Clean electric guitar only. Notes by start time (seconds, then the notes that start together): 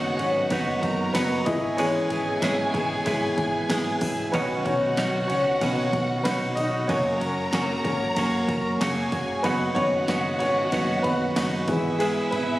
Already playing: F#2 C#3 F#3 B3 D#4 F#4
0.19 F#3 B3 D#4 F#4
0.51 F#3 B3 D#4 F#4
1.15 F#2 C#3 F#3 B3 D#4 F#4
1.46 B3 E4 G#4
1.78 G#3 B3 E4 G#4
2.10 B3 E4 G#4
2.42 G#3 B3 E4 G#4
2.74 B3 E4 G#4
3.05 G#3 B3 E4 G#4
3.70 G#3 B3 E4 G#4
4.02 B3 E4 G#4
4.33 B2 F#3 C#4 D#4 F#4
4.65 C#4 D#4 F#4
4.97 B2 F#3 C#4 D#4 F#4
5.29 C#4 D#4 F#4
5.61 F#3 C#4 D#4 F#4
6.25 B2 F#3 C#4 D#4 F#4
6.57 C#4 D#4 F#4
6.89 F#2 C#3 F#3 A#3 C#4 F#4
7.21 F#3 A#3 C#4 F#4
7.53 F#2 C#3 F#3 A#3 C#4 F#4
7.85 F#3 A#3 C#4 F#4
8.17 F#3 A#3 C#4 F#4
8.81 F#2 C#3 F#3 A#3 C#4 F#4
9.12 F#3 A#3 C#4 F#4
9.45 F#2 C#3 F#3 B3 D#4 F#4
9.76 F#3 B3 D#4 F#4
10.08 F#2 C#3 F#3 B3 D#4 F#4
10.40 F#3 B3 D#4 F#4
10.72 F#3 B3 D#4 F#4
11.36 F#2 C#3 F#3 B3 D#4 F#4
11.68 B3 E4 G#4
12.00 G#3 B3 E4 G#4
12.32 B3 E4 G#4